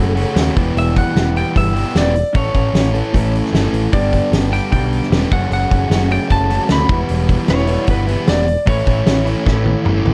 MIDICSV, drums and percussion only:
0, 0, Header, 1, 2, 480
1, 0, Start_track
1, 0, Tempo, 396040
1, 920, Time_signature, 4, 2, 24, 8
1, 12288, End_track
2, 0, Start_track
2, 0, Title_t, "Drums"
2, 203, Note_on_c, 9, 46, 51
2, 324, Note_off_c, 9, 46, 0
2, 439, Note_on_c, 9, 46, 66
2, 441, Note_on_c, 9, 38, 99
2, 561, Note_off_c, 9, 46, 0
2, 562, Note_off_c, 9, 38, 0
2, 688, Note_on_c, 9, 36, 92
2, 690, Note_on_c, 9, 46, 46
2, 809, Note_off_c, 9, 36, 0
2, 811, Note_off_c, 9, 46, 0
2, 932, Note_on_c, 9, 46, 59
2, 1053, Note_off_c, 9, 46, 0
2, 1163, Note_on_c, 9, 46, 49
2, 1168, Note_on_c, 9, 36, 73
2, 1284, Note_off_c, 9, 46, 0
2, 1289, Note_off_c, 9, 36, 0
2, 1410, Note_on_c, 9, 46, 60
2, 1412, Note_on_c, 9, 38, 98
2, 1532, Note_off_c, 9, 46, 0
2, 1533, Note_off_c, 9, 38, 0
2, 1652, Note_on_c, 9, 46, 48
2, 1773, Note_off_c, 9, 46, 0
2, 1891, Note_on_c, 9, 36, 72
2, 1898, Note_on_c, 9, 46, 60
2, 2012, Note_off_c, 9, 36, 0
2, 2019, Note_off_c, 9, 46, 0
2, 2137, Note_on_c, 9, 46, 47
2, 2258, Note_off_c, 9, 46, 0
2, 2370, Note_on_c, 9, 46, 59
2, 2371, Note_on_c, 9, 38, 97
2, 2491, Note_off_c, 9, 46, 0
2, 2492, Note_off_c, 9, 38, 0
2, 2613, Note_on_c, 9, 46, 43
2, 2735, Note_off_c, 9, 46, 0
2, 2848, Note_on_c, 9, 36, 101
2, 2850, Note_on_c, 9, 46, 57
2, 2969, Note_off_c, 9, 36, 0
2, 2971, Note_off_c, 9, 46, 0
2, 3087, Note_on_c, 9, 36, 77
2, 3095, Note_on_c, 9, 46, 43
2, 3208, Note_off_c, 9, 36, 0
2, 3216, Note_off_c, 9, 46, 0
2, 3332, Note_on_c, 9, 46, 58
2, 3334, Note_on_c, 9, 38, 103
2, 3454, Note_off_c, 9, 46, 0
2, 3455, Note_off_c, 9, 38, 0
2, 3573, Note_on_c, 9, 46, 43
2, 3694, Note_off_c, 9, 46, 0
2, 3809, Note_on_c, 9, 36, 68
2, 3822, Note_on_c, 9, 46, 60
2, 3930, Note_off_c, 9, 36, 0
2, 3943, Note_off_c, 9, 46, 0
2, 4065, Note_on_c, 9, 46, 47
2, 4186, Note_off_c, 9, 46, 0
2, 4187, Note_on_c, 9, 38, 30
2, 4298, Note_on_c, 9, 46, 62
2, 4299, Note_off_c, 9, 38, 0
2, 4299, Note_on_c, 9, 38, 103
2, 4419, Note_off_c, 9, 46, 0
2, 4420, Note_off_c, 9, 38, 0
2, 4529, Note_on_c, 9, 46, 50
2, 4651, Note_off_c, 9, 46, 0
2, 4766, Note_on_c, 9, 36, 99
2, 4769, Note_on_c, 9, 46, 66
2, 4887, Note_off_c, 9, 36, 0
2, 4890, Note_off_c, 9, 46, 0
2, 5006, Note_on_c, 9, 36, 73
2, 5013, Note_on_c, 9, 46, 48
2, 5128, Note_off_c, 9, 36, 0
2, 5135, Note_off_c, 9, 46, 0
2, 5252, Note_on_c, 9, 46, 62
2, 5253, Note_on_c, 9, 38, 97
2, 5373, Note_off_c, 9, 46, 0
2, 5374, Note_off_c, 9, 38, 0
2, 5495, Note_on_c, 9, 46, 51
2, 5616, Note_off_c, 9, 46, 0
2, 5727, Note_on_c, 9, 46, 55
2, 5728, Note_on_c, 9, 36, 70
2, 5848, Note_off_c, 9, 46, 0
2, 5849, Note_off_c, 9, 36, 0
2, 5972, Note_on_c, 9, 46, 50
2, 6090, Note_on_c, 9, 38, 28
2, 6093, Note_off_c, 9, 46, 0
2, 6209, Note_on_c, 9, 46, 64
2, 6210, Note_off_c, 9, 38, 0
2, 6210, Note_on_c, 9, 38, 102
2, 6330, Note_off_c, 9, 46, 0
2, 6331, Note_off_c, 9, 38, 0
2, 6445, Note_on_c, 9, 36, 98
2, 6451, Note_on_c, 9, 46, 46
2, 6566, Note_off_c, 9, 36, 0
2, 6572, Note_off_c, 9, 46, 0
2, 6688, Note_on_c, 9, 46, 60
2, 6809, Note_off_c, 9, 46, 0
2, 6925, Note_on_c, 9, 36, 82
2, 6931, Note_on_c, 9, 46, 44
2, 7046, Note_off_c, 9, 36, 0
2, 7052, Note_off_c, 9, 46, 0
2, 7166, Note_on_c, 9, 46, 60
2, 7167, Note_on_c, 9, 38, 100
2, 7287, Note_off_c, 9, 46, 0
2, 7288, Note_off_c, 9, 38, 0
2, 7402, Note_on_c, 9, 46, 43
2, 7523, Note_off_c, 9, 46, 0
2, 7636, Note_on_c, 9, 46, 53
2, 7640, Note_on_c, 9, 36, 74
2, 7757, Note_off_c, 9, 46, 0
2, 7761, Note_off_c, 9, 36, 0
2, 7880, Note_on_c, 9, 46, 50
2, 8001, Note_off_c, 9, 46, 0
2, 8106, Note_on_c, 9, 46, 60
2, 8107, Note_on_c, 9, 38, 98
2, 8227, Note_off_c, 9, 46, 0
2, 8228, Note_off_c, 9, 38, 0
2, 8343, Note_on_c, 9, 46, 48
2, 8354, Note_on_c, 9, 36, 104
2, 8464, Note_off_c, 9, 46, 0
2, 8476, Note_off_c, 9, 36, 0
2, 8588, Note_on_c, 9, 46, 63
2, 8709, Note_off_c, 9, 46, 0
2, 8835, Note_on_c, 9, 36, 78
2, 8835, Note_on_c, 9, 46, 50
2, 8957, Note_off_c, 9, 36, 0
2, 8957, Note_off_c, 9, 46, 0
2, 9066, Note_on_c, 9, 46, 67
2, 9067, Note_on_c, 9, 38, 97
2, 9187, Note_off_c, 9, 46, 0
2, 9188, Note_off_c, 9, 38, 0
2, 9298, Note_on_c, 9, 46, 49
2, 9419, Note_off_c, 9, 46, 0
2, 9538, Note_on_c, 9, 46, 62
2, 9549, Note_on_c, 9, 36, 75
2, 9660, Note_off_c, 9, 46, 0
2, 9670, Note_off_c, 9, 36, 0
2, 9796, Note_on_c, 9, 46, 51
2, 9917, Note_off_c, 9, 46, 0
2, 10029, Note_on_c, 9, 46, 62
2, 10031, Note_on_c, 9, 38, 109
2, 10151, Note_off_c, 9, 46, 0
2, 10152, Note_off_c, 9, 38, 0
2, 10276, Note_on_c, 9, 46, 49
2, 10397, Note_off_c, 9, 46, 0
2, 10507, Note_on_c, 9, 46, 64
2, 10512, Note_on_c, 9, 36, 101
2, 10629, Note_off_c, 9, 46, 0
2, 10633, Note_off_c, 9, 36, 0
2, 10745, Note_on_c, 9, 46, 45
2, 10750, Note_on_c, 9, 36, 76
2, 10867, Note_off_c, 9, 46, 0
2, 10872, Note_off_c, 9, 36, 0
2, 10988, Note_on_c, 9, 46, 56
2, 10989, Note_on_c, 9, 38, 107
2, 11109, Note_off_c, 9, 46, 0
2, 11110, Note_off_c, 9, 38, 0
2, 11232, Note_on_c, 9, 46, 44
2, 11353, Note_off_c, 9, 46, 0
2, 11470, Note_on_c, 9, 36, 73
2, 11478, Note_on_c, 9, 38, 52
2, 11592, Note_off_c, 9, 36, 0
2, 11599, Note_off_c, 9, 38, 0
2, 11705, Note_on_c, 9, 48, 60
2, 11826, Note_off_c, 9, 48, 0
2, 11945, Note_on_c, 9, 45, 79
2, 12066, Note_off_c, 9, 45, 0
2, 12188, Note_on_c, 9, 43, 78
2, 12288, Note_off_c, 9, 43, 0
2, 12288, End_track
0, 0, End_of_file